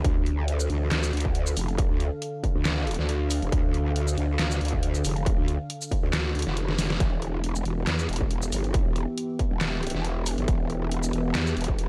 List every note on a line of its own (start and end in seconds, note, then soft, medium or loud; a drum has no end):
0.04 0.68 D2 loud
0.04 6.96 D3 medium
0.04 6.96 D4 medium
0.04 6.96 A4 medium
0.04 6.96 F5 loud
0.04 kick loud
0.04 closed hi-hat medium
0.26 closed hi-hat medium
0.48 closed hi-hat medium
0.60 shaker medium
0.70 0.90 D2 loud
0.70 closed hi-hat soft
0.91 1.12 D2 loud
0.91 snare loud
0.91 clap medium
0.91 closed hi-hat medium
1.03 shaker medium
1.13 1.55 D2 loud
1.13 closed hi-hat soft
1.17 closed hi-hat medium
1.20 closed hi-hat medium
1.25 kick medium
1.35 closed hi-hat medium
1.47 shaker medium
1.57 1.88 F1 loud
1.57 open hi-hat medium
1.57 shaker medium
1.68 closed hi-hat soft
1.78 kick loud
1.78 closed hi-hat medium
1.90 2.10 D2 loud
2.00 closed hi-hat medium
2.22 closed hi-hat medium
2.44 kick medium
2.44 closed hi-hat medium
2.55 2.97 D2 medium
2.65 snare loud
2.65 clap medium
2.65 closed hi-hat medium
2.87 closed hi-hat soft
2.91 closed hi-hat medium
2.94 closed hi-hat medium
2.99 3.40 D2 loud
2.99 snare soft
3.09 closed hi-hat medium
3.31 open hi-hat loud
3.31 shaker medium
3.42 3.51 F1 loud
3.42 closed hi-hat soft
3.52 4.16 D2 loud
3.52 kick loud
3.52 closed hi-hat medium
3.74 closed hi-hat medium
3.96 closed hi-hat medium
4.08 shaker medium
4.18 4.38 D2 loud
4.18 closed hi-hat medium
4.39 4.59 D2 loud
4.39 snare loud
4.39 clap medium
4.39 closed hi-hat medium
4.51 shaker medium
4.61 5.03 D2 loud
4.61 closed hi-hat medium
4.65 closed hi-hat medium
4.68 closed hi-hat medium
4.73 kick medium
4.83 closed hi-hat medium
4.95 shaker medium
5.04 5.36 F1 loud
5.04 open hi-hat loud
5.04 shaker medium
5.16 closed hi-hat soft
5.26 kick loud
5.26 closed hi-hat medium
5.38 5.58 D2 loud
5.48 closed hi-hat medium
5.70 closed hi-hat medium
5.82 shaker medium
5.92 kick medium
5.92 closed hi-hat medium
6.03 6.33 D2 loud
6.13 snare loud
6.13 clap medium
6.13 closed hi-hat medium
6.35 6.45 D2 loud
6.35 closed hi-hat medium
6.39 closed hi-hat medium
6.42 closed hi-hat medium
6.47 6.77 F1 loud
6.47 snare soft
6.57 closed hi-hat medium
6.69 snare medium
6.78 6.99 F1 loud
6.78 snare medium
6.78 open hi-hat medium
6.78 shaker medium
6.90 snare medium
6.90 closed hi-hat soft
7.00 7.64 E1 loud
7.00 11.89 E3 medium
7.00 11.89 B3 medium
7.00 11.89 G4 medium
7.00 11.89 E5 loud
7.00 kick loud
7.00 closed hi-hat medium
7.22 closed hi-hat medium
7.44 closed hi-hat medium
7.55 shaker medium
7.65 7.86 E1 loud
7.65 closed hi-hat medium
7.87 8.07 E2 medium
7.87 snare loud
7.87 clap medium
7.87 closed hi-hat medium
7.99 shaker medium
8.09 8.51 E1 loud
8.09 closed hi-hat medium
8.13 closed hi-hat medium
8.16 closed hi-hat medium
8.21 kick medium
8.31 closed hi-hat medium
8.42 shaker medium
8.52 8.84 G1 loud
8.52 open hi-hat loud
8.52 shaker medium
8.64 closed hi-hat soft
8.74 kick loud
8.74 closed hi-hat medium
8.86 9.06 E1 loud
8.96 closed hi-hat medium
9.18 closed hi-hat medium
9.39 kick medium
9.39 closed hi-hat medium
9.51 9.93 E1 loud
9.61 snare loud
9.61 clap medium
9.61 closed hi-hat medium
9.83 closed hi-hat medium
9.87 closed hi-hat medium
9.90 closed hi-hat medium
9.95 10.36 E1 loud
9.95 snare soft
10.05 closed hi-hat medium
10.26 open hi-hat medium
10.26 shaker medium
10.38 10.46 G1 loud
10.38 closed hi-hat soft
10.48 11.12 E1 loud
10.48 kick loud
10.48 closed hi-hat medium
10.70 closed hi-hat medium
10.91 closed hi-hat medium
11.03 shaker medium
11.13 11.33 E1 loud
11.13 closed hi-hat medium
11.35 11.55 E2 loud
11.35 snare loud
11.35 clap medium
11.35 closed hi-hat medium
11.47 shaker medium
11.57 11.89 E1 loud
11.57 closed hi-hat soft
11.61 closed hi-hat medium
11.64 closed hi-hat medium
11.68 kick medium
11.79 closed hi-hat medium